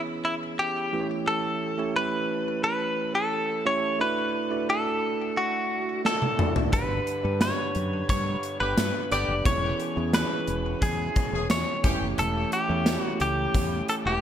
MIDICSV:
0, 0, Header, 1, 7, 480
1, 0, Start_track
1, 0, Tempo, 681818
1, 895, Time_signature, 4, 2, 24, 8
1, 10004, End_track
2, 0, Start_track
2, 0, Title_t, "Clean electric guitar"
2, 0, Program_c, 0, 27
2, 175, Note_on_c, 0, 64, 85
2, 240, Note_off_c, 0, 64, 0
2, 417, Note_on_c, 0, 67, 90
2, 751, Note_off_c, 0, 67, 0
2, 898, Note_on_c, 0, 69, 99
2, 1380, Note_off_c, 0, 69, 0
2, 1383, Note_on_c, 0, 71, 101
2, 1849, Note_off_c, 0, 71, 0
2, 1858, Note_on_c, 0, 71, 100
2, 2215, Note_off_c, 0, 71, 0
2, 2218, Note_on_c, 0, 69, 96
2, 2578, Note_off_c, 0, 69, 0
2, 2581, Note_on_c, 0, 73, 103
2, 2821, Note_off_c, 0, 73, 0
2, 2824, Note_on_c, 0, 71, 103
2, 3304, Note_off_c, 0, 71, 0
2, 3307, Note_on_c, 0, 69, 98
2, 3783, Note_on_c, 0, 66, 96
2, 3795, Note_off_c, 0, 69, 0
2, 4231, Note_off_c, 0, 66, 0
2, 4267, Note_on_c, 0, 69, 99
2, 4596, Note_off_c, 0, 69, 0
2, 4740, Note_on_c, 0, 71, 106
2, 5218, Note_off_c, 0, 71, 0
2, 5221, Note_on_c, 0, 73, 103
2, 5693, Note_off_c, 0, 73, 0
2, 5701, Note_on_c, 0, 73, 109
2, 6033, Note_off_c, 0, 73, 0
2, 6057, Note_on_c, 0, 71, 105
2, 6420, Note_off_c, 0, 71, 0
2, 6423, Note_on_c, 0, 74, 103
2, 6642, Note_off_c, 0, 74, 0
2, 6661, Note_on_c, 0, 73, 111
2, 7139, Note_off_c, 0, 73, 0
2, 7142, Note_on_c, 0, 71, 106
2, 7621, Note_on_c, 0, 68, 104
2, 7632, Note_off_c, 0, 71, 0
2, 8070, Note_off_c, 0, 68, 0
2, 8102, Note_on_c, 0, 73, 106
2, 8434, Note_off_c, 0, 73, 0
2, 8583, Note_on_c, 0, 69, 103
2, 8819, Note_off_c, 0, 69, 0
2, 8822, Note_on_c, 0, 67, 98
2, 9167, Note_off_c, 0, 67, 0
2, 9167, Note_on_c, 0, 66, 98
2, 9295, Note_off_c, 0, 66, 0
2, 9304, Note_on_c, 0, 67, 95
2, 9779, Note_off_c, 0, 67, 0
2, 9782, Note_on_c, 0, 69, 90
2, 9817, Note_off_c, 0, 69, 0
2, 9903, Note_on_c, 0, 67, 95
2, 10004, Note_off_c, 0, 67, 0
2, 10004, End_track
3, 0, Start_track
3, 0, Title_t, "Tine electric piano"
3, 0, Program_c, 1, 4
3, 0, Control_c, 1, 64, 127
3, 0, Note_on_c, 1, 52, 67
3, 0, Note_on_c, 1, 59, 74
3, 0, Note_on_c, 1, 61, 68
3, 0, Note_on_c, 1, 64, 69
3, 0, Note_on_c, 1, 68, 66
3, 0, Note_on_c, 1, 73, 81
3, 206, Note_off_c, 1, 59, 0
3, 206, Note_off_c, 1, 61, 0
3, 208, Note_off_c, 1, 64, 0
3, 209, Note_off_c, 1, 68, 0
3, 209, Note_off_c, 1, 73, 0
3, 652, Note_on_c, 1, 57, 79
3, 654, Note_on_c, 1, 61, 69
3, 656, Note_off_c, 1, 52, 0
3, 656, Note_on_c, 1, 52, 63
3, 656, Note_on_c, 1, 64, 72
3, 658, Note_on_c, 1, 67, 72
3, 660, Note_on_c, 1, 71, 67
3, 665, Control_c, 1, 64, 0
3, 703, Note_off_c, 1, 71, 0
3, 705, Note_on_c, 1, 73, 85
3, 779, Control_c, 1, 64, 127
3, 1197, Note_off_c, 1, 57, 0
3, 1198, Note_off_c, 1, 61, 0
3, 1200, Note_off_c, 1, 64, 0
3, 1201, Note_off_c, 1, 67, 0
3, 1224, Note_off_c, 1, 73, 0
3, 1252, Note_on_c, 1, 57, 78
3, 1253, Note_on_c, 1, 61, 71
3, 1257, Note_on_c, 1, 64, 66
3, 1257, Note_on_c, 1, 67, 70
3, 1258, Note_on_c, 1, 73, 81
3, 1347, Note_off_c, 1, 52, 0
3, 2124, Note_off_c, 1, 57, 0
3, 2125, Note_off_c, 1, 61, 0
3, 2126, Note_off_c, 1, 64, 0
3, 2126, Note_off_c, 1, 67, 0
3, 2127, Note_off_c, 1, 73, 0
3, 2568, Note_on_c, 1, 57, 71
3, 2571, Note_on_c, 1, 61, 69
3, 2574, Note_on_c, 1, 64, 67
3, 2575, Note_on_c, 1, 67, 70
3, 2577, Note_on_c, 1, 73, 79
3, 2789, Note_off_c, 1, 57, 0
3, 2790, Note_off_c, 1, 61, 0
3, 2792, Note_off_c, 1, 64, 0
3, 2792, Note_off_c, 1, 67, 0
3, 2794, Note_off_c, 1, 73, 0
3, 2809, Note_on_c, 1, 57, 77
3, 2811, Note_on_c, 1, 62, 68
3, 2812, Note_on_c, 1, 64, 70
3, 2816, Note_on_c, 1, 66, 69
3, 2818, Note_on_c, 1, 74, 82
3, 2824, Control_c, 1, 64, 0
3, 2928, Control_c, 1, 64, 127
3, 3138, Note_off_c, 1, 57, 0
3, 3139, Note_off_c, 1, 62, 0
3, 3140, Note_off_c, 1, 64, 0
3, 3142, Note_off_c, 1, 66, 0
3, 3143, Note_off_c, 1, 74, 0
3, 3171, Note_on_c, 1, 57, 78
3, 3172, Note_on_c, 1, 62, 69
3, 3173, Note_on_c, 1, 64, 70
3, 3178, Note_on_c, 1, 66, 70
3, 3179, Note_on_c, 1, 74, 83
3, 4044, Note_off_c, 1, 57, 0
3, 4044, Note_off_c, 1, 62, 0
3, 4044, Note_off_c, 1, 64, 0
3, 4047, Note_off_c, 1, 66, 0
3, 4047, Note_off_c, 1, 74, 0
3, 4492, Note_on_c, 1, 57, 68
3, 4494, Note_on_c, 1, 62, 66
3, 4496, Note_on_c, 1, 64, 65
3, 4499, Note_on_c, 1, 66, 68
3, 4500, Note_on_c, 1, 74, 82
3, 4711, Note_off_c, 1, 57, 0
3, 4712, Note_off_c, 1, 62, 0
3, 4713, Note_off_c, 1, 64, 0
3, 4714, Note_off_c, 1, 66, 0
3, 4715, Note_off_c, 1, 74, 0
3, 4734, Note_on_c, 1, 62, 77
3, 4737, Note_on_c, 1, 67, 70
3, 4738, Note_on_c, 1, 43, 64
3, 4743, Control_c, 1, 64, 0
3, 4743, Note_on_c, 1, 71, 79
3, 4885, Control_c, 1, 64, 127
3, 5061, Note_off_c, 1, 62, 0
3, 5062, Note_off_c, 1, 67, 0
3, 5065, Note_off_c, 1, 71, 0
3, 5091, Note_on_c, 1, 62, 79
3, 5096, Note_on_c, 1, 67, 70
3, 5100, Note_on_c, 1, 71, 84
3, 5428, Note_off_c, 1, 43, 0
3, 5963, Note_off_c, 1, 62, 0
3, 5966, Note_off_c, 1, 67, 0
3, 5968, Note_off_c, 1, 71, 0
3, 6412, Note_on_c, 1, 62, 74
3, 6416, Note_on_c, 1, 67, 68
3, 6420, Note_on_c, 1, 71, 85
3, 6631, Note_off_c, 1, 62, 0
3, 6633, Note_off_c, 1, 67, 0
3, 6635, Note_off_c, 1, 71, 0
3, 6651, Note_on_c, 1, 59, 77
3, 6654, Note_on_c, 1, 61, 66
3, 6656, Note_on_c, 1, 52, 66
3, 6656, Note_on_c, 1, 64, 69
3, 6659, Note_on_c, 1, 68, 68
3, 6661, Note_on_c, 1, 73, 82
3, 6665, Control_c, 1, 64, 0
3, 6796, Control_c, 1, 64, 127
3, 6979, Note_off_c, 1, 59, 0
3, 6981, Note_off_c, 1, 61, 0
3, 6982, Note_off_c, 1, 64, 0
3, 6983, Note_off_c, 1, 68, 0
3, 6984, Note_off_c, 1, 73, 0
3, 7011, Note_on_c, 1, 59, 75
3, 7013, Note_on_c, 1, 61, 69
3, 7016, Note_on_c, 1, 64, 68
3, 7018, Note_on_c, 1, 68, 72
3, 7020, Note_on_c, 1, 73, 82
3, 7347, Note_off_c, 1, 52, 0
3, 7884, Note_off_c, 1, 59, 0
3, 7884, Note_off_c, 1, 61, 0
3, 7886, Note_off_c, 1, 64, 0
3, 7887, Note_off_c, 1, 68, 0
3, 7888, Note_off_c, 1, 73, 0
3, 8331, Note_on_c, 1, 57, 82
3, 8332, Note_on_c, 1, 61, 71
3, 8334, Note_on_c, 1, 52, 67
3, 8335, Note_on_c, 1, 64, 68
3, 8335, Note_on_c, 1, 67, 71
3, 8339, Note_on_c, 1, 73, 87
3, 8343, Control_c, 1, 64, 0
3, 8470, Control_c, 1, 64, 127
3, 8877, Note_off_c, 1, 57, 0
3, 8878, Note_off_c, 1, 61, 0
3, 8879, Note_off_c, 1, 64, 0
3, 8879, Note_off_c, 1, 67, 0
3, 8881, Note_off_c, 1, 73, 0
3, 8930, Note_on_c, 1, 57, 79
3, 8933, Note_on_c, 1, 61, 72
3, 8935, Note_on_c, 1, 64, 73
3, 8937, Note_on_c, 1, 67, 68
3, 8938, Note_on_c, 1, 73, 81
3, 9026, Note_off_c, 1, 52, 0
3, 9803, Note_off_c, 1, 57, 0
3, 9804, Note_off_c, 1, 61, 0
3, 9806, Note_off_c, 1, 64, 0
3, 9806, Note_off_c, 1, 67, 0
3, 9807, Note_off_c, 1, 73, 0
3, 10004, End_track
4, 0, Start_track
4, 0, Title_t, "Horn section"
4, 0, Program_c, 2, 61
4, 6055, Note_on_c, 2, 50, 87
4, 6055, Note_on_c, 2, 67, 97
4, 6056, Note_on_c, 2, 59, 88
4, 6157, Note_off_c, 2, 50, 0
4, 6157, Note_off_c, 2, 59, 0
4, 6157, Note_off_c, 2, 67, 0
4, 6416, Note_on_c, 2, 50, 101
4, 6416, Note_on_c, 2, 59, 102
4, 6416, Note_on_c, 2, 67, 107
4, 6568, Note_off_c, 2, 59, 0
4, 6568, Note_off_c, 2, 67, 0
4, 6569, Note_off_c, 2, 50, 0
4, 7974, Note_on_c, 2, 52, 85
4, 7975, Note_on_c, 2, 61, 85
4, 7975, Note_on_c, 2, 68, 92
4, 8076, Note_off_c, 2, 52, 0
4, 8077, Note_off_c, 2, 61, 0
4, 8077, Note_off_c, 2, 68, 0
4, 8334, Note_on_c, 2, 52, 100
4, 8335, Note_on_c, 2, 61, 99
4, 8335, Note_on_c, 2, 67, 111
4, 8487, Note_off_c, 2, 52, 0
4, 8488, Note_off_c, 2, 61, 0
4, 8488, Note_off_c, 2, 67, 0
4, 9892, Note_on_c, 2, 52, 91
4, 9892, Note_on_c, 2, 61, 85
4, 9893, Note_on_c, 2, 67, 95
4, 9995, Note_off_c, 2, 52, 0
4, 9995, Note_off_c, 2, 61, 0
4, 9995, Note_off_c, 2, 67, 0
4, 10004, End_track
5, 0, Start_track
5, 0, Title_t, "Overdriven electric guitar"
5, 0, Program_c, 3, 29
5, 4743, Note_on_c, 3, 50, 81
5, 5688, Note_on_c, 3, 43, 85
5, 5692, Note_off_c, 3, 50, 0
5, 5701, Note_on_c, 3, 50, 80
5, 5711, Note_on_c, 3, 55, 81
5, 6650, Note_off_c, 3, 43, 0
5, 6652, Note_on_c, 3, 40, 82
5, 6657, Note_off_c, 3, 50, 0
5, 6660, Note_on_c, 3, 47, 79
5, 6661, Note_off_c, 3, 55, 0
5, 6663, Note_on_c, 3, 52, 93
5, 7125, Note_off_c, 3, 40, 0
5, 7132, Note_off_c, 3, 47, 0
5, 7133, Note_on_c, 3, 40, 60
5, 7140, Note_on_c, 3, 47, 63
5, 7146, Note_off_c, 3, 52, 0
5, 7149, Note_on_c, 3, 52, 69
5, 7601, Note_off_c, 3, 40, 0
5, 7607, Note_off_c, 3, 47, 0
5, 7609, Note_on_c, 3, 40, 83
5, 7616, Note_on_c, 3, 47, 81
5, 7617, Note_off_c, 3, 52, 0
5, 7620, Note_on_c, 3, 52, 90
5, 7846, Note_off_c, 3, 52, 0
5, 7852, Note_off_c, 3, 40, 0
5, 7854, Note_on_c, 3, 52, 49
5, 7855, Note_off_c, 3, 47, 0
5, 7871, Note_on_c, 3, 47, 44
5, 8335, Note_on_c, 3, 57, 69
5, 8338, Note_off_c, 3, 52, 0
5, 8341, Note_on_c, 3, 52, 60
5, 8342, Note_off_c, 3, 47, 0
5, 8345, Note_on_c, 3, 45, 61
5, 9043, Note_off_c, 3, 45, 0
5, 9049, Note_off_c, 3, 52, 0
5, 9051, Note_on_c, 3, 45, 56
5, 9058, Note_on_c, 3, 52, 63
5, 9063, Note_off_c, 3, 57, 0
5, 9066, Note_on_c, 3, 57, 63
5, 9521, Note_off_c, 3, 45, 0
5, 9529, Note_on_c, 3, 45, 80
5, 9533, Note_off_c, 3, 52, 0
5, 9542, Note_on_c, 3, 52, 86
5, 9549, Note_off_c, 3, 57, 0
5, 9552, Note_on_c, 3, 57, 87
5, 10004, Note_off_c, 3, 45, 0
5, 10004, Note_off_c, 3, 52, 0
5, 10004, Note_off_c, 3, 57, 0
5, 10004, End_track
6, 0, Start_track
6, 0, Title_t, "Fretless electric bass"
6, 0, Program_c, 4, 35
6, 4738, Note_on_c, 4, 31, 108
6, 4917, Note_off_c, 4, 31, 0
6, 5100, Note_on_c, 4, 43, 95
6, 5278, Note_off_c, 4, 43, 0
6, 5461, Note_on_c, 4, 42, 89
6, 5639, Note_off_c, 4, 42, 0
6, 5698, Note_on_c, 4, 43, 109
6, 5877, Note_off_c, 4, 43, 0
6, 6058, Note_on_c, 4, 31, 83
6, 6147, Note_off_c, 4, 31, 0
6, 6179, Note_on_c, 4, 43, 109
6, 6267, Note_off_c, 4, 43, 0
6, 6419, Note_on_c, 4, 31, 87
6, 6507, Note_off_c, 4, 31, 0
6, 6535, Note_on_c, 4, 30, 85
6, 6625, Note_off_c, 4, 30, 0
6, 6656, Note_on_c, 4, 28, 102
6, 6836, Note_off_c, 4, 28, 0
6, 7018, Note_on_c, 4, 40, 92
6, 7197, Note_off_c, 4, 40, 0
6, 7378, Note_on_c, 4, 28, 84
6, 7557, Note_off_c, 4, 28, 0
6, 7618, Note_on_c, 4, 40, 112
6, 7797, Note_off_c, 4, 40, 0
6, 7977, Note_on_c, 4, 28, 92
6, 8066, Note_off_c, 4, 28, 0
6, 8093, Note_on_c, 4, 40, 100
6, 8184, Note_off_c, 4, 40, 0
6, 8337, Note_on_c, 4, 28, 99
6, 8426, Note_off_c, 4, 28, 0
6, 8454, Note_on_c, 4, 30, 85
6, 8544, Note_off_c, 4, 30, 0
6, 8575, Note_on_c, 4, 28, 106
6, 8755, Note_off_c, 4, 28, 0
6, 8938, Note_on_c, 4, 40, 94
6, 9117, Note_off_c, 4, 40, 0
6, 9297, Note_on_c, 4, 37, 86
6, 9476, Note_off_c, 4, 37, 0
6, 9537, Note_on_c, 4, 40, 110
6, 9716, Note_off_c, 4, 40, 0
6, 9895, Note_on_c, 4, 28, 95
6, 9985, Note_off_c, 4, 28, 0
6, 10004, End_track
7, 0, Start_track
7, 0, Title_t, "Drums"
7, 4259, Note_on_c, 9, 38, 63
7, 4329, Note_off_c, 9, 38, 0
7, 4378, Note_on_c, 9, 48, 65
7, 4448, Note_off_c, 9, 48, 0
7, 4498, Note_on_c, 9, 45, 97
7, 4569, Note_off_c, 9, 45, 0
7, 4618, Note_on_c, 9, 43, 99
7, 4688, Note_off_c, 9, 43, 0
7, 4736, Note_on_c, 9, 42, 89
7, 4737, Note_on_c, 9, 36, 108
7, 4807, Note_off_c, 9, 36, 0
7, 4807, Note_off_c, 9, 42, 0
7, 4977, Note_on_c, 9, 42, 60
7, 5048, Note_off_c, 9, 42, 0
7, 5214, Note_on_c, 9, 38, 115
7, 5216, Note_on_c, 9, 42, 93
7, 5216, Note_on_c, 9, 54, 66
7, 5285, Note_off_c, 9, 38, 0
7, 5286, Note_off_c, 9, 42, 0
7, 5287, Note_off_c, 9, 54, 0
7, 5455, Note_on_c, 9, 42, 74
7, 5525, Note_off_c, 9, 42, 0
7, 5697, Note_on_c, 9, 36, 88
7, 5697, Note_on_c, 9, 42, 99
7, 5767, Note_off_c, 9, 36, 0
7, 5767, Note_off_c, 9, 42, 0
7, 5936, Note_on_c, 9, 42, 82
7, 6006, Note_off_c, 9, 42, 0
7, 6177, Note_on_c, 9, 54, 74
7, 6178, Note_on_c, 9, 38, 127
7, 6178, Note_on_c, 9, 42, 104
7, 6248, Note_off_c, 9, 38, 0
7, 6248, Note_off_c, 9, 54, 0
7, 6249, Note_off_c, 9, 42, 0
7, 6417, Note_on_c, 9, 42, 81
7, 6487, Note_off_c, 9, 42, 0
7, 6656, Note_on_c, 9, 36, 109
7, 6657, Note_on_c, 9, 42, 94
7, 6727, Note_off_c, 9, 36, 0
7, 6727, Note_off_c, 9, 42, 0
7, 6896, Note_on_c, 9, 42, 61
7, 6967, Note_off_c, 9, 42, 0
7, 7135, Note_on_c, 9, 38, 113
7, 7136, Note_on_c, 9, 42, 101
7, 7136, Note_on_c, 9, 54, 65
7, 7205, Note_off_c, 9, 38, 0
7, 7207, Note_off_c, 9, 42, 0
7, 7207, Note_off_c, 9, 54, 0
7, 7374, Note_on_c, 9, 42, 73
7, 7445, Note_off_c, 9, 42, 0
7, 7617, Note_on_c, 9, 36, 93
7, 7617, Note_on_c, 9, 42, 103
7, 7687, Note_off_c, 9, 36, 0
7, 7688, Note_off_c, 9, 42, 0
7, 7855, Note_on_c, 9, 42, 83
7, 7858, Note_on_c, 9, 36, 101
7, 7925, Note_off_c, 9, 42, 0
7, 7928, Note_off_c, 9, 36, 0
7, 8094, Note_on_c, 9, 54, 78
7, 8095, Note_on_c, 9, 38, 124
7, 8095, Note_on_c, 9, 42, 101
7, 8165, Note_off_c, 9, 38, 0
7, 8165, Note_off_c, 9, 54, 0
7, 8166, Note_off_c, 9, 42, 0
7, 8334, Note_on_c, 9, 42, 84
7, 8336, Note_on_c, 9, 36, 110
7, 8405, Note_off_c, 9, 42, 0
7, 8406, Note_off_c, 9, 36, 0
7, 8575, Note_on_c, 9, 42, 94
7, 8646, Note_off_c, 9, 42, 0
7, 8814, Note_on_c, 9, 42, 63
7, 8884, Note_off_c, 9, 42, 0
7, 9053, Note_on_c, 9, 38, 121
7, 9055, Note_on_c, 9, 42, 94
7, 9055, Note_on_c, 9, 54, 68
7, 9124, Note_off_c, 9, 38, 0
7, 9125, Note_off_c, 9, 42, 0
7, 9125, Note_off_c, 9, 54, 0
7, 9293, Note_on_c, 9, 42, 73
7, 9363, Note_off_c, 9, 42, 0
7, 9536, Note_on_c, 9, 36, 93
7, 9536, Note_on_c, 9, 42, 101
7, 9606, Note_off_c, 9, 36, 0
7, 9606, Note_off_c, 9, 42, 0
7, 9775, Note_on_c, 9, 42, 84
7, 9845, Note_off_c, 9, 42, 0
7, 10004, End_track
0, 0, End_of_file